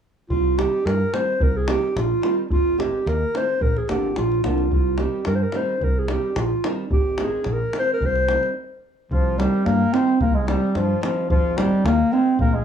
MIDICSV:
0, 0, Header, 1, 6, 480
1, 0, Start_track
1, 0, Key_signature, -3, "minor"
1, 0, Tempo, 549954
1, 264, Time_signature, 2, 2, 24, 8
1, 11037, End_track
2, 0, Start_track
2, 0, Title_t, "Trumpet"
2, 0, Program_c, 0, 56
2, 7958, Note_on_c, 0, 65, 74
2, 8201, Note_on_c, 0, 67, 71
2, 8214, Note_off_c, 0, 65, 0
2, 8438, Note_on_c, 0, 70, 84
2, 8451, Note_off_c, 0, 67, 0
2, 8682, Note_on_c, 0, 72, 78
2, 8695, Note_off_c, 0, 70, 0
2, 8906, Note_off_c, 0, 72, 0
2, 8911, Note_on_c, 0, 70, 68
2, 9042, Note_on_c, 0, 68, 64
2, 9056, Note_off_c, 0, 70, 0
2, 9156, Note_off_c, 0, 68, 0
2, 9168, Note_on_c, 0, 67, 67
2, 9404, Note_on_c, 0, 65, 72
2, 9417, Note_off_c, 0, 67, 0
2, 9624, Note_off_c, 0, 65, 0
2, 9629, Note_on_c, 0, 65, 58
2, 9853, Note_off_c, 0, 65, 0
2, 9867, Note_on_c, 0, 65, 79
2, 10097, Note_on_c, 0, 67, 76
2, 10110, Note_off_c, 0, 65, 0
2, 10348, Note_on_c, 0, 70, 75
2, 10361, Note_off_c, 0, 67, 0
2, 10597, Note_on_c, 0, 72, 62
2, 10610, Note_off_c, 0, 70, 0
2, 10828, Note_off_c, 0, 72, 0
2, 10833, Note_on_c, 0, 70, 73
2, 10955, Note_on_c, 0, 68, 63
2, 10968, Note_off_c, 0, 70, 0
2, 11037, Note_off_c, 0, 68, 0
2, 11037, End_track
3, 0, Start_track
3, 0, Title_t, "Clarinet"
3, 0, Program_c, 1, 71
3, 263, Note_on_c, 1, 65, 90
3, 511, Note_on_c, 1, 67, 79
3, 524, Note_off_c, 1, 65, 0
3, 748, Note_on_c, 1, 70, 87
3, 761, Note_off_c, 1, 67, 0
3, 993, Note_on_c, 1, 72, 82
3, 1006, Note_off_c, 1, 70, 0
3, 1244, Note_on_c, 1, 70, 76
3, 1257, Note_off_c, 1, 72, 0
3, 1370, Note_on_c, 1, 68, 68
3, 1383, Note_off_c, 1, 70, 0
3, 1477, Note_off_c, 1, 68, 0
3, 1482, Note_on_c, 1, 67, 88
3, 1699, Note_off_c, 1, 67, 0
3, 1725, Note_on_c, 1, 65, 79
3, 1942, Note_off_c, 1, 65, 0
3, 1955, Note_on_c, 1, 65, 79
3, 2062, Note_off_c, 1, 65, 0
3, 2193, Note_on_c, 1, 65, 90
3, 2416, Note_off_c, 1, 65, 0
3, 2436, Note_on_c, 1, 67, 76
3, 2690, Note_on_c, 1, 70, 92
3, 2703, Note_off_c, 1, 67, 0
3, 2940, Note_on_c, 1, 72, 88
3, 2953, Note_off_c, 1, 70, 0
3, 3157, Note_on_c, 1, 70, 81
3, 3170, Note_off_c, 1, 72, 0
3, 3298, Note_on_c, 1, 68, 63
3, 3311, Note_off_c, 1, 70, 0
3, 3398, Note_off_c, 1, 68, 0
3, 3403, Note_on_c, 1, 67, 73
3, 3622, Note_off_c, 1, 67, 0
3, 3643, Note_on_c, 1, 65, 81
3, 3863, Note_off_c, 1, 65, 0
3, 3875, Note_on_c, 1, 65, 71
3, 4098, Note_off_c, 1, 65, 0
3, 4133, Note_on_c, 1, 65, 75
3, 4362, Note_on_c, 1, 67, 74
3, 4375, Note_off_c, 1, 65, 0
3, 4599, Note_off_c, 1, 67, 0
3, 4603, Note_on_c, 1, 70, 80
3, 4669, Note_on_c, 1, 72, 62
3, 4682, Note_off_c, 1, 70, 0
3, 4734, Note_on_c, 1, 70, 73
3, 4747, Note_off_c, 1, 72, 0
3, 4856, Note_on_c, 1, 72, 75
3, 4869, Note_off_c, 1, 70, 0
3, 5095, Note_on_c, 1, 70, 77
3, 5108, Note_off_c, 1, 72, 0
3, 5226, Note_on_c, 1, 68, 66
3, 5240, Note_off_c, 1, 70, 0
3, 5330, Note_off_c, 1, 68, 0
3, 5336, Note_on_c, 1, 67, 65
3, 5578, Note_on_c, 1, 65, 68
3, 5591, Note_off_c, 1, 67, 0
3, 5808, Note_off_c, 1, 65, 0
3, 6045, Note_on_c, 1, 67, 82
3, 6315, Note_on_c, 1, 68, 73
3, 6328, Note_off_c, 1, 67, 0
3, 6572, Note_on_c, 1, 70, 77
3, 6585, Note_off_c, 1, 68, 0
3, 6785, Note_off_c, 1, 70, 0
3, 6797, Note_on_c, 1, 72, 93
3, 6894, Note_off_c, 1, 72, 0
3, 6925, Note_on_c, 1, 70, 85
3, 7030, Note_on_c, 1, 72, 92
3, 7043, Note_off_c, 1, 70, 0
3, 7494, Note_off_c, 1, 72, 0
3, 7952, Note_on_c, 1, 53, 81
3, 8186, Note_on_c, 1, 55, 84
3, 8199, Note_off_c, 1, 53, 0
3, 8428, Note_on_c, 1, 58, 89
3, 8441, Note_off_c, 1, 55, 0
3, 8666, Note_on_c, 1, 60, 84
3, 8679, Note_off_c, 1, 58, 0
3, 8910, Note_off_c, 1, 60, 0
3, 8917, Note_on_c, 1, 58, 88
3, 9029, Note_on_c, 1, 56, 78
3, 9042, Note_off_c, 1, 58, 0
3, 9142, Note_off_c, 1, 56, 0
3, 9147, Note_on_c, 1, 55, 86
3, 9398, Note_on_c, 1, 53, 78
3, 9411, Note_off_c, 1, 55, 0
3, 9623, Note_off_c, 1, 53, 0
3, 9628, Note_on_c, 1, 53, 80
3, 9853, Note_off_c, 1, 53, 0
3, 9862, Note_on_c, 1, 53, 83
3, 10100, Note_on_c, 1, 55, 87
3, 10113, Note_off_c, 1, 53, 0
3, 10350, Note_on_c, 1, 58, 89
3, 10363, Note_off_c, 1, 55, 0
3, 10582, Note_on_c, 1, 60, 85
3, 10595, Note_off_c, 1, 58, 0
3, 10820, Note_off_c, 1, 60, 0
3, 10825, Note_on_c, 1, 58, 77
3, 10940, Note_on_c, 1, 56, 69
3, 10953, Note_off_c, 1, 58, 0
3, 11037, Note_off_c, 1, 56, 0
3, 11037, End_track
4, 0, Start_track
4, 0, Title_t, "Nylon-string guitar"
4, 0, Program_c, 2, 24
4, 502, Note_on_c, 2, 51, 62
4, 506, Note_on_c, 2, 55, 54
4, 513, Note_on_c, 2, 60, 52
4, 519, Note_on_c, 2, 63, 65
4, 673, Note_off_c, 2, 51, 0
4, 676, Note_off_c, 2, 55, 0
4, 677, Note_off_c, 2, 60, 0
4, 681, Note_off_c, 2, 63, 0
4, 989, Note_on_c, 2, 51, 53
4, 996, Note_on_c, 2, 55, 54
4, 1001, Note_on_c, 2, 60, 58
4, 1006, Note_on_c, 2, 63, 59
4, 1158, Note_off_c, 2, 51, 0
4, 1160, Note_off_c, 2, 55, 0
4, 1164, Note_off_c, 2, 60, 0
4, 1166, Note_off_c, 2, 63, 0
4, 1460, Note_on_c, 2, 51, 59
4, 1464, Note_on_c, 2, 55, 51
4, 1469, Note_on_c, 2, 60, 53
4, 1474, Note_on_c, 2, 63, 66
4, 1634, Note_off_c, 2, 51, 0
4, 1634, Note_off_c, 2, 55, 0
4, 1639, Note_off_c, 2, 60, 0
4, 1640, Note_off_c, 2, 63, 0
4, 1936, Note_on_c, 2, 51, 53
4, 1940, Note_on_c, 2, 55, 58
4, 1946, Note_on_c, 2, 60, 54
4, 1954, Note_on_c, 2, 63, 67
4, 2113, Note_off_c, 2, 51, 0
4, 2114, Note_off_c, 2, 55, 0
4, 2117, Note_off_c, 2, 60, 0
4, 2121, Note_off_c, 2, 63, 0
4, 2425, Note_on_c, 2, 51, 54
4, 2432, Note_on_c, 2, 56, 54
4, 2434, Note_on_c, 2, 60, 60
4, 2443, Note_on_c, 2, 63, 67
4, 2597, Note_off_c, 2, 51, 0
4, 2601, Note_off_c, 2, 56, 0
4, 2601, Note_off_c, 2, 60, 0
4, 2607, Note_off_c, 2, 63, 0
4, 2916, Note_on_c, 2, 51, 55
4, 2920, Note_on_c, 2, 56, 55
4, 2927, Note_on_c, 2, 60, 51
4, 2931, Note_on_c, 2, 63, 68
4, 3084, Note_off_c, 2, 51, 0
4, 3086, Note_off_c, 2, 56, 0
4, 3090, Note_off_c, 2, 60, 0
4, 3090, Note_off_c, 2, 63, 0
4, 3385, Note_on_c, 2, 50, 64
4, 3391, Note_on_c, 2, 53, 52
4, 3397, Note_on_c, 2, 58, 52
4, 3405, Note_on_c, 2, 62, 62
4, 3559, Note_off_c, 2, 50, 0
4, 3562, Note_off_c, 2, 53, 0
4, 3565, Note_off_c, 2, 58, 0
4, 3569, Note_off_c, 2, 62, 0
4, 3868, Note_on_c, 2, 50, 54
4, 3881, Note_on_c, 2, 53, 47
4, 3884, Note_on_c, 2, 58, 45
4, 3885, Note_on_c, 2, 62, 59
4, 4041, Note_off_c, 2, 50, 0
4, 4047, Note_off_c, 2, 53, 0
4, 4048, Note_off_c, 2, 58, 0
4, 4049, Note_off_c, 2, 62, 0
4, 4353, Note_on_c, 2, 51, 55
4, 4360, Note_on_c, 2, 55, 52
4, 4364, Note_on_c, 2, 60, 45
4, 4372, Note_on_c, 2, 63, 61
4, 4524, Note_off_c, 2, 51, 0
4, 4528, Note_off_c, 2, 55, 0
4, 4528, Note_off_c, 2, 60, 0
4, 4533, Note_off_c, 2, 63, 0
4, 4832, Note_on_c, 2, 51, 64
4, 4836, Note_on_c, 2, 55, 56
4, 4843, Note_on_c, 2, 60, 48
4, 4851, Note_on_c, 2, 63, 70
4, 5004, Note_off_c, 2, 51, 0
4, 5004, Note_off_c, 2, 55, 0
4, 5009, Note_off_c, 2, 60, 0
4, 5013, Note_off_c, 2, 63, 0
4, 5306, Note_on_c, 2, 51, 67
4, 5310, Note_on_c, 2, 55, 56
4, 5314, Note_on_c, 2, 60, 53
4, 5320, Note_on_c, 2, 63, 65
4, 5481, Note_off_c, 2, 51, 0
4, 5482, Note_off_c, 2, 55, 0
4, 5485, Note_off_c, 2, 60, 0
4, 5488, Note_off_c, 2, 63, 0
4, 5795, Note_on_c, 2, 51, 62
4, 5798, Note_on_c, 2, 55, 57
4, 5801, Note_on_c, 2, 60, 51
4, 5803, Note_on_c, 2, 63, 62
4, 5965, Note_off_c, 2, 51, 0
4, 5967, Note_off_c, 2, 55, 0
4, 5968, Note_off_c, 2, 60, 0
4, 5970, Note_off_c, 2, 63, 0
4, 6275, Note_on_c, 2, 51, 58
4, 6284, Note_on_c, 2, 56, 54
4, 6288, Note_on_c, 2, 60, 56
4, 6294, Note_on_c, 2, 63, 66
4, 6445, Note_off_c, 2, 51, 0
4, 6450, Note_off_c, 2, 56, 0
4, 6452, Note_off_c, 2, 60, 0
4, 6455, Note_off_c, 2, 63, 0
4, 6766, Note_on_c, 2, 51, 60
4, 6771, Note_on_c, 2, 56, 49
4, 6776, Note_on_c, 2, 60, 62
4, 6779, Note_on_c, 2, 63, 66
4, 6931, Note_off_c, 2, 51, 0
4, 6934, Note_off_c, 2, 56, 0
4, 6936, Note_off_c, 2, 60, 0
4, 6937, Note_off_c, 2, 63, 0
4, 7245, Note_on_c, 2, 51, 58
4, 7249, Note_on_c, 2, 55, 52
4, 7252, Note_on_c, 2, 60, 61
4, 7257, Note_on_c, 2, 63, 63
4, 7411, Note_off_c, 2, 51, 0
4, 7411, Note_off_c, 2, 55, 0
4, 7414, Note_off_c, 2, 60, 0
4, 7416, Note_off_c, 2, 63, 0
4, 8189, Note_on_c, 2, 51, 62
4, 8196, Note_on_c, 2, 55, 54
4, 8200, Note_on_c, 2, 60, 53
4, 8202, Note_on_c, 2, 63, 70
4, 8361, Note_off_c, 2, 51, 0
4, 8366, Note_off_c, 2, 55, 0
4, 8366, Note_off_c, 2, 60, 0
4, 8368, Note_off_c, 2, 63, 0
4, 8666, Note_on_c, 2, 51, 56
4, 8671, Note_on_c, 2, 55, 52
4, 8678, Note_on_c, 2, 60, 50
4, 8683, Note_on_c, 2, 63, 57
4, 8839, Note_off_c, 2, 51, 0
4, 8842, Note_off_c, 2, 55, 0
4, 8845, Note_off_c, 2, 60, 0
4, 8848, Note_off_c, 2, 63, 0
4, 9136, Note_on_c, 2, 51, 59
4, 9140, Note_on_c, 2, 55, 59
4, 9147, Note_on_c, 2, 60, 57
4, 9151, Note_on_c, 2, 63, 71
4, 9314, Note_off_c, 2, 51, 0
4, 9316, Note_off_c, 2, 55, 0
4, 9319, Note_off_c, 2, 60, 0
4, 9321, Note_off_c, 2, 63, 0
4, 9611, Note_on_c, 2, 51, 56
4, 9614, Note_on_c, 2, 55, 52
4, 9622, Note_on_c, 2, 60, 53
4, 9627, Note_on_c, 2, 63, 68
4, 9790, Note_off_c, 2, 51, 0
4, 9791, Note_off_c, 2, 55, 0
4, 9796, Note_off_c, 2, 60, 0
4, 9798, Note_off_c, 2, 63, 0
4, 10095, Note_on_c, 2, 51, 56
4, 10102, Note_on_c, 2, 56, 60
4, 10110, Note_on_c, 2, 60, 65
4, 10115, Note_on_c, 2, 63, 64
4, 10272, Note_off_c, 2, 51, 0
4, 10275, Note_off_c, 2, 56, 0
4, 10279, Note_off_c, 2, 60, 0
4, 10282, Note_off_c, 2, 63, 0
4, 10574, Note_on_c, 2, 51, 59
4, 10578, Note_on_c, 2, 56, 54
4, 10584, Note_on_c, 2, 60, 60
4, 10588, Note_on_c, 2, 63, 69
4, 10751, Note_off_c, 2, 51, 0
4, 10752, Note_off_c, 2, 56, 0
4, 10755, Note_off_c, 2, 60, 0
4, 10757, Note_off_c, 2, 63, 0
4, 11037, End_track
5, 0, Start_track
5, 0, Title_t, "Fingered electric bass"
5, 0, Program_c, 3, 33
5, 264, Note_on_c, 3, 36, 81
5, 553, Note_off_c, 3, 36, 0
5, 748, Note_on_c, 3, 43, 88
5, 892, Note_off_c, 3, 43, 0
5, 1233, Note_on_c, 3, 36, 81
5, 1520, Note_off_c, 3, 36, 0
5, 1712, Note_on_c, 3, 34, 87
5, 1855, Note_off_c, 3, 34, 0
5, 2194, Note_on_c, 3, 32, 77
5, 2482, Note_off_c, 3, 32, 0
5, 2674, Note_on_c, 3, 39, 82
5, 2817, Note_off_c, 3, 39, 0
5, 3154, Note_on_c, 3, 34, 76
5, 3298, Note_off_c, 3, 34, 0
5, 3398, Note_on_c, 3, 32, 67
5, 3612, Note_off_c, 3, 32, 0
5, 3643, Note_on_c, 3, 34, 76
5, 3856, Note_off_c, 3, 34, 0
5, 3880, Note_on_c, 3, 36, 62
5, 4094, Note_off_c, 3, 36, 0
5, 4115, Note_on_c, 3, 36, 76
5, 4403, Note_off_c, 3, 36, 0
5, 4598, Note_on_c, 3, 43, 79
5, 4741, Note_off_c, 3, 43, 0
5, 5074, Note_on_c, 3, 36, 83
5, 5363, Note_off_c, 3, 36, 0
5, 5553, Note_on_c, 3, 34, 94
5, 5698, Note_off_c, 3, 34, 0
5, 6031, Note_on_c, 3, 32, 71
5, 6321, Note_off_c, 3, 32, 0
5, 6512, Note_on_c, 3, 34, 85
5, 6658, Note_off_c, 3, 34, 0
5, 7001, Note_on_c, 3, 36, 84
5, 7288, Note_off_c, 3, 36, 0
5, 7955, Note_on_c, 3, 36, 86
5, 8243, Note_off_c, 3, 36, 0
5, 8434, Note_on_c, 3, 43, 84
5, 8578, Note_off_c, 3, 43, 0
5, 8907, Note_on_c, 3, 36, 93
5, 9197, Note_off_c, 3, 36, 0
5, 9386, Note_on_c, 3, 43, 79
5, 9532, Note_off_c, 3, 43, 0
5, 9864, Note_on_c, 3, 32, 91
5, 10154, Note_off_c, 3, 32, 0
5, 10338, Note_on_c, 3, 39, 90
5, 10485, Note_off_c, 3, 39, 0
5, 10813, Note_on_c, 3, 34, 86
5, 11037, Note_off_c, 3, 34, 0
5, 11037, End_track
6, 0, Start_track
6, 0, Title_t, "Davul"
6, 263, Note_on_c, 9, 43, 75
6, 351, Note_off_c, 9, 43, 0
6, 512, Note_on_c, 9, 37, 67
6, 599, Note_off_c, 9, 37, 0
6, 760, Note_on_c, 9, 37, 58
6, 847, Note_off_c, 9, 37, 0
6, 992, Note_on_c, 9, 37, 64
6, 1079, Note_off_c, 9, 37, 0
6, 1224, Note_on_c, 9, 43, 91
6, 1312, Note_off_c, 9, 43, 0
6, 1464, Note_on_c, 9, 37, 71
6, 1551, Note_off_c, 9, 37, 0
6, 1716, Note_on_c, 9, 37, 62
6, 1803, Note_off_c, 9, 37, 0
6, 1949, Note_on_c, 9, 37, 60
6, 2036, Note_off_c, 9, 37, 0
6, 2186, Note_on_c, 9, 43, 90
6, 2273, Note_off_c, 9, 43, 0
6, 2443, Note_on_c, 9, 37, 66
6, 2530, Note_off_c, 9, 37, 0
6, 2682, Note_on_c, 9, 37, 47
6, 2770, Note_off_c, 9, 37, 0
6, 2923, Note_on_c, 9, 37, 57
6, 3010, Note_off_c, 9, 37, 0
6, 3151, Note_on_c, 9, 43, 83
6, 3238, Note_off_c, 9, 43, 0
6, 3287, Note_on_c, 9, 37, 25
6, 3374, Note_off_c, 9, 37, 0
6, 3396, Note_on_c, 9, 37, 61
6, 3483, Note_off_c, 9, 37, 0
6, 3633, Note_on_c, 9, 37, 58
6, 3720, Note_off_c, 9, 37, 0
6, 3768, Note_on_c, 9, 37, 21
6, 3855, Note_off_c, 9, 37, 0
6, 3876, Note_on_c, 9, 37, 59
6, 3963, Note_off_c, 9, 37, 0
6, 3996, Note_on_c, 9, 37, 20
6, 4083, Note_off_c, 9, 37, 0
6, 4109, Note_on_c, 9, 43, 76
6, 4197, Note_off_c, 9, 43, 0
6, 4343, Note_on_c, 9, 37, 56
6, 4431, Note_off_c, 9, 37, 0
6, 4581, Note_on_c, 9, 37, 59
6, 4669, Note_off_c, 9, 37, 0
6, 4820, Note_on_c, 9, 37, 57
6, 4908, Note_off_c, 9, 37, 0
6, 5070, Note_on_c, 9, 43, 77
6, 5158, Note_off_c, 9, 43, 0
6, 5310, Note_on_c, 9, 37, 63
6, 5397, Note_off_c, 9, 37, 0
6, 5552, Note_on_c, 9, 37, 64
6, 5639, Note_off_c, 9, 37, 0
6, 5796, Note_on_c, 9, 37, 70
6, 5883, Note_off_c, 9, 37, 0
6, 6027, Note_on_c, 9, 43, 95
6, 6114, Note_off_c, 9, 43, 0
6, 6265, Note_on_c, 9, 37, 63
6, 6352, Note_off_c, 9, 37, 0
6, 6497, Note_on_c, 9, 37, 52
6, 6584, Note_off_c, 9, 37, 0
6, 6749, Note_on_c, 9, 37, 62
6, 6837, Note_off_c, 9, 37, 0
6, 6988, Note_on_c, 9, 43, 77
6, 7075, Note_off_c, 9, 43, 0
6, 7119, Note_on_c, 9, 37, 24
6, 7206, Note_off_c, 9, 37, 0
6, 7231, Note_on_c, 9, 37, 60
6, 7318, Note_off_c, 9, 37, 0
6, 7358, Note_on_c, 9, 37, 24
6, 7445, Note_off_c, 9, 37, 0
6, 7950, Note_on_c, 9, 43, 72
6, 8037, Note_off_c, 9, 43, 0
6, 8202, Note_on_c, 9, 37, 68
6, 8289, Note_off_c, 9, 37, 0
6, 8434, Note_on_c, 9, 37, 50
6, 8521, Note_off_c, 9, 37, 0
6, 8673, Note_on_c, 9, 37, 57
6, 8760, Note_off_c, 9, 37, 0
6, 8907, Note_on_c, 9, 43, 78
6, 8994, Note_off_c, 9, 43, 0
6, 9148, Note_on_c, 9, 37, 63
6, 9236, Note_off_c, 9, 37, 0
6, 9385, Note_on_c, 9, 37, 51
6, 9472, Note_off_c, 9, 37, 0
6, 9629, Note_on_c, 9, 37, 69
6, 9716, Note_off_c, 9, 37, 0
6, 9862, Note_on_c, 9, 43, 95
6, 9949, Note_off_c, 9, 43, 0
6, 10105, Note_on_c, 9, 37, 76
6, 10193, Note_off_c, 9, 37, 0
6, 10348, Note_on_c, 9, 37, 67
6, 10435, Note_off_c, 9, 37, 0
6, 10822, Note_on_c, 9, 43, 81
6, 10909, Note_off_c, 9, 43, 0
6, 11037, End_track
0, 0, End_of_file